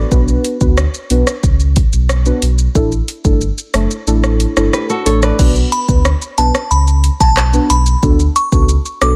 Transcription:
0.11 0.37 B1 loud
0.11 0.57 B3 medium
0.11 0.57 D4 medium
0.11 0.57 F#4 medium
0.11 0.57 B4 loud
0.11 kick loud
0.11 shaker medium
0.28 shaker medium
0.45 closed hi-hat medium
0.45 shaker soft
0.61 0.87 D2 loud
0.61 0.77 B3 medium
0.61 0.77 D4 medium
0.61 0.77 F#4 medium
0.61 0.77 B4 medium
0.61 kick medium
0.61 shaker medium
0.77 cross-stick loud
0.77 shaker medium
0.94 shaker soft
1.10 1.23 B1 medium
1.10 1.26 B3 medium
1.10 1.26 D4 medium
1.10 1.27 F#4 medium
1.10 1.27 B4 medium
1.10 closed hi-hat medium
1.10 shaker medium
1.27 cross-stick medium
1.27 shaker medium
1.43 1.82 C#2 loud
1.43 kick medium
1.43 shaker medium
1.60 shaker soft
1.76 kick loud
1.76 closed hi-hat medium
1.76 shaker medium
1.93 2.32 B1 loud
1.93 shaker medium
2.09 cross-stick loud
2.09 shaker medium
2.26 2.42 B3 medium
2.26 2.42 D4 medium
2.26 2.42 F#4 medium
2.26 2.42 B4 medium
2.26 shaker medium
2.42 2.68 B1 medium
2.42 closed hi-hat loud
2.42 shaker medium
2.58 shaker medium
2.75 3.01 A1 loud
2.75 2.91 A3 medium
2.75 2.91 D4 medium
2.75 2.91 E4 medium
2.75 2.91 A4 loud
2.75 kick loud
2.75 shaker medium
2.92 shaker soft
3.08 closed hi-hat medium
3.08 shaker soft
3.24 3.51 G1 medium
3.24 3.41 A3 medium
3.24 3.41 D4 medium
3.24 3.41 E4 medium
3.24 3.41 A4 medium
3.24 kick medium
3.24 shaker medium
3.41 shaker medium
3.58 shaker medium
3.74 3.87 F#1 medium
3.74 3.90 A3 medium
3.74 3.90 D4 medium
3.74 3.90 E4 medium
3.74 3.90 A4 medium
3.74 cross-stick medium
3.74 closed hi-hat medium
3.74 shaker medium
3.91 shaker medium
4.07 4.46 A1 loud
4.07 4.53 A3 loud
4.07 4.53 D4 medium
4.07 4.53 E4 medium
4.07 4.53 A4 loud
4.07 shaker medium
4.24 cross-stick medium
4.24 shaker soft
4.40 closed hi-hat medium
4.40 shaker soft
4.56 4.70 G1 medium
4.56 5.02 A3 medium
4.56 5.02 D4 medium
4.56 5.02 E4 medium
4.56 5.02 A4 medium
4.56 cross-stick loud
4.56 shaker medium
4.73 4.89 G4 medium
4.73 4.89 B4 medium
4.73 cross-stick medium
4.73 shaker medium
4.90 5.06 F#4 medium
4.90 5.05 A4 medium
4.90 shaker medium
5.06 5.32 A1 medium
5.06 5.36 A3 medium
5.06 5.36 D4 medium
5.06 5.36 E4 medium
5.06 5.37 A4 medium
5.06 5.22 A4 medium
5.06 5.22 C#5 medium
5.06 closed hi-hat medium
5.06 shaker medium
5.22 5.54 B4 medium
5.22 5.54 D5 medium
5.22 cross-stick medium
5.22 shaker medium
5.39 5.65 B1 loud
5.39 5.84 B3 medium
5.39 5.85 D4 medium
5.39 5.85 F#4 medium
5.39 5.85 B4 loud
5.39 kick loud
5.39 crash loud
5.39 shaker medium
5.56 shaker medium
5.72 5.86 B5 medium
5.72 closed hi-hat medium
5.72 shaker medium
5.88 6.14 D2 medium
5.88 6.04 B3 medium
5.88 6.04 D4 medium
5.88 6.05 F#4 medium
5.88 6.05 B4 medium
5.88 kick loud
5.88 shaker medium
6.05 cross-stick loud
6.05 shaker medium
6.22 shaker medium
6.38 6.51 B1 medium
6.38 6.54 B3 medium
6.38 6.54 D4 medium
6.38 6.54 F#4 medium
6.38 6.54 B4 medium
6.38 6.51 A5 medium
6.38 closed hi-hat medium
6.38 shaker medium
6.55 cross-stick medium
6.55 shaker medium
6.71 7.10 C#2 loud
6.71 6.84 B5 medium
6.71 shaker medium
6.88 shaker soft
7.04 closed hi-hat medium
7.04 shaker medium
7.20 7.59 B1 loud
7.20 7.34 A5 medium
7.20 kick loud
7.20 shaker medium
7.37 cross-stick loud
7.37 clap loud
7.37 shaker medium
7.53 7.69 B3 medium
7.53 7.69 D4 medium
7.53 7.69 F#4 medium
7.53 7.70 B4 medium
7.53 shaker medium
7.70 7.96 B1 loud
7.70 7.83 B5 medium
7.70 closed hi-hat loud
7.70 shaker medium
7.86 shaker medium
8.03 8.29 D2 loud
8.03 8.19 B3 medium
8.03 8.19 D4 medium
8.03 8.19 F#4 medium
8.03 8.19 A4 loud
8.03 kick loud
8.03 shaker medium
8.20 shaker medium
8.36 8.49 C#6 medium
8.36 closed hi-hat medium
8.36 shaker medium
8.52 8.78 C#2 loud
8.52 8.68 B3 medium
8.52 8.68 D4 medium
8.52 8.68 F#4 medium
8.52 8.68 A4 medium
8.52 kick loud
8.52 shaker medium
8.69 shaker medium
8.86 shaker medium
9.01 9.15 B1 loud
9.01 9.16 B3 medium
9.01 9.16 D4 medium
9.01 9.16 F#4 medium
9.01 9.16 A4 medium
9.01 9.15 D6 medium
9.01 cross-stick loud
9.01 closed hi-hat medium
9.01 shaker medium

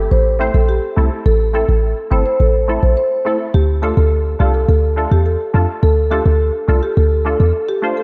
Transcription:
0.11 0.50 A1 loud
0.11 0.22 C5 medium
0.39 0.51 A3 medium
0.39 0.51 C4 medium
0.39 0.52 E4 medium
0.39 0.52 C5 medium
0.54 0.80 A#1 medium
0.54 0.65 A4 medium
0.69 1.09 G4 medium
0.96 1.10 C2 medium
0.96 1.08 A3 medium
0.96 1.08 C4 medium
0.96 1.09 E4 medium
0.96 1.09 A4 medium
1.26 1.64 A1 loud
1.26 1.37 A4 loud
1.53 1.65 A3 medium
1.53 1.66 C4 medium
1.53 1.66 E4 medium
1.53 1.65 A4 medium
1.53 1.66 A4 medium
1.69 1.94 A1 loud
1.69 1.80 A4 medium
2.11 2.24 G1 loud
2.11 2.22 A3 medium
2.11 2.23 C4 medium
2.11 2.23 E4 medium
2.11 2.23 A4 medium
2.11 2.23 C5 medium
2.26 2.37 C5 medium
2.40 2.78 A1 loud
2.40 2.51 A4 medium
2.68 2.80 A3 medium
2.68 2.80 C4 medium
2.68 2.80 E4 medium
2.68 2.80 A4 medium
2.83 2.96 A#1 medium
2.83 2.94 C5 medium
2.97 3.37 C5 medium
3.25 3.37 A3 medium
3.25 3.37 C4 medium
3.25 3.37 E4 medium
3.25 3.38 A4 medium
3.54 3.92 D2 loud
3.54 3.65 G4 medium
3.82 3.94 A3 medium
3.82 3.94 D4 medium
3.82 3.94 F4 medium
3.82 3.94 A4 medium
3.82 3.95 A4 medium
3.97 4.35 D2 loud
3.97 4.08 A4 medium
4.39 4.65 C2 medium
4.39 4.51 A3 medium
4.39 4.51 D4 medium
4.39 4.52 F4 medium
4.39 4.51 G4 medium
4.39 4.52 A4 medium
4.54 4.65 A4 medium
4.69 5.07 D2 loud
4.69 4.80 A4 medium
4.96 5.08 A3 medium
4.96 5.08 D4 medium
4.96 5.09 F4 medium
4.96 5.09 A4 medium
5.11 5.37 E2 medium
5.11 5.22 G4 medium
5.26 5.66 A4 medium
5.53 5.67 F2 medium
5.53 5.65 A3 medium
5.53 5.66 D4 medium
5.53 5.66 F4 medium
5.53 5.66 A4 medium
5.83 6.21 D2 loud
5.83 5.94 A4 loud
6.11 6.22 A3 medium
6.11 6.23 D4 medium
6.11 6.23 F4 medium
6.11 6.22 G4 medium
6.11 6.23 A4 medium
6.26 6.51 D2 loud
6.26 6.37 A4 medium
6.68 6.81 C2 medium
6.68 6.80 A3 medium
6.68 6.80 D4 medium
6.68 6.80 F4 medium
6.68 6.80 A4 medium
6.83 6.94 G4 medium
6.97 7.35 D2 loud
6.97 7.08 A4 medium
7.25 7.37 A3 medium
7.25 7.37 D4 medium
7.25 7.37 F4 medium
7.25 7.37 A4 medium
7.40 7.53 E2 medium
7.40 7.51 A4 medium
7.69 7.80 G4 medium
7.82 7.94 A3 medium
7.82 7.94 D4 medium
7.82 7.94 F4 medium
7.82 7.95 C5 medium
7.97 8.03 A4 medium

